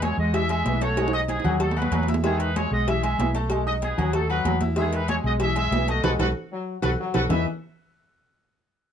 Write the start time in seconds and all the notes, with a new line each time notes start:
Already playing: E2
0.02 G#3 E4 G#4 C#5 G#5, cowbell, high conga, low timbale, low agogo
0.17 E2 G#3 F#4 D#5, high conga
0.34 E3 E4 G#4 E5, cowbell, low agogo
0.49 G#3 G#4 E5 G#5, cowbell, high conga, low agogo
0.65 B1 E3, cowbell, high conga, low timbale
0.81 A3 F#4 A4 C#5 A5, cowbell, low agogo
0.97 G#3, cowbell, high conga, high timbale, low agogo
1.08 high timbale
1.13 D#4 F#4 D#5 D#6, high conga
1.28 B3 G#4, cowbell, high conga, high timbale, low agogo
1.40 high timbale
1.44 D#2 F#3 F#4 F#5, high conga, low conga, low agogo
1.60 A3 D#4 A4 A5, cowbell, high conga
1.71 low timbale
1.77 F#3 D#4 F#4 B4 F#5, high conga, low agogo
1.82 low timbale
1.91 E2 F#3, cowbell, high conga, low timbale, low agogo
2.03 low timbale
2.08 E4 E5 E6, cowbell, high conga
2.14 low timbale
2.24 D#3 G#3 B3 G#4 E5, cowbell, high conga
2.40 D#4 B4, cowbell, low agogo
2.56 G#3 E4 G#4 C#5 G#5, cowbell, high conga, low timbale, low agogo
2.71 B1 G#3 F#4 D#5, high conga
2.88 E3 E4 G#4 E5, cowbell, high conga, low agogo
3.03 G#3 G#4 E5 G#5, cowbell, high conga, low agogo
3.18 B1 E3, cowbell, high conga, low timbale
3.35 A3 A4 A5, cowbell, low agogo
3.50 G#3, cowbell, high conga, low agogo
3.67 D#4 F#4 D#5 D#6, high conga
3.82 B3 G#4, cowbell, high conga, low timbale, low agogo
3.98 D#2 F#3 F#4 F#5, high conga, low conga, low agogo
4.13 A3 D#4 A4 A5, cowbell, high conga
4.30 F#3 D#4 F#4 B4 F#5, high conga, low agogo
4.45 E2 F#3, cowbell, high conga, low timbale, low agogo
4.61 E4 E5 E6, cowbell, high conga
4.76 D#3 G#3 B3 G#4 E5, cowbell, high conga
4.93 D#4 B4, cowbell, high conga, low agogo
5.08 G#3 E4 G#4 C#5 G#5, cowbell, high conga, low timbale, low agogo
5.24 B1 G#3 F#4 D#5, high conga
5.40 E3 E4 G#4 E5, cowbell, low agogo
5.56 G#3 G#4 E5 G#5, cowbell, high conga, low agogo
5.71 B1 E3, cowbell, high conga, low timbale
5.88 A3 F#4 A4 D#5 A5, cowbell, low agogo
6.03 B1 G#3 F#4 A4 B4, cowbell, low conga, high timbale
6.19 B1 F#4 A4 B4, cowbell, low conga, high timbale
6.52 F#3
6.82 B1 F#4 A4 B4, cowbell, low conga, high timbale
6.99 F#3
7.14 B1 F#4 A4 B4, cowbell, low conga, high timbale
7.29 E2 E3 B3 D#4 E4 G#4 B4 E5, low bongo, low conga, low timbale